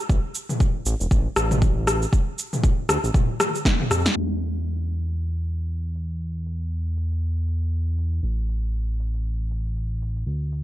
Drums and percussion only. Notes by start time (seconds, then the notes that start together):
0.10 kick, cabasa
0.35 cabasa
0.49 mid tom, cabasa
0.60 kick, cabasa
0.86 cabasa
1.01 cabasa
1.11 kick, cabasa
1.36 cross-stick, cabasa
1.51 mid tom, cabasa
1.62 kick, cabasa
1.87 cross-stick, cabasa
2.02 cabasa
2.13 kick, cabasa
2.38 cabasa
2.53 mid tom, cabasa
2.64 kick, cabasa
2.89 cross-stick, cabasa
3.04 cabasa
3.14 kick, mid tom, cabasa
3.40 cross-stick, high tom, cabasa
3.55 cabasa
3.65 kick, snare, cabasa
3.80 mid tom
3.91 cross-stick, cabasa
4.06 snare, cabasa
4.42 cabasa
4.57 cabasa
4.67 cabasa
4.93 cabasa
5.08 cabasa
5.19 cabasa
5.44 cabasa
5.59 cabasa
5.69 cabasa
5.95 cabasa
6.10 cabasa
6.20 cabasa
6.46 cabasa
6.60 cabasa
6.71 cabasa
6.97 cabasa
7.11 cabasa
7.22 cabasa
7.47 cabasa
7.62 cabasa
7.73 cabasa
7.98 cabasa
8.12 cabasa
8.23 cabasa
8.49 cabasa
8.64 cabasa
8.74 cabasa
8.99 cabasa
9.14 cabasa
9.25 cabasa
9.50 cabasa
9.65 cabasa
9.76 cabasa
10.01 cabasa
10.16 cabasa
10.27 cabasa
10.52 cabasa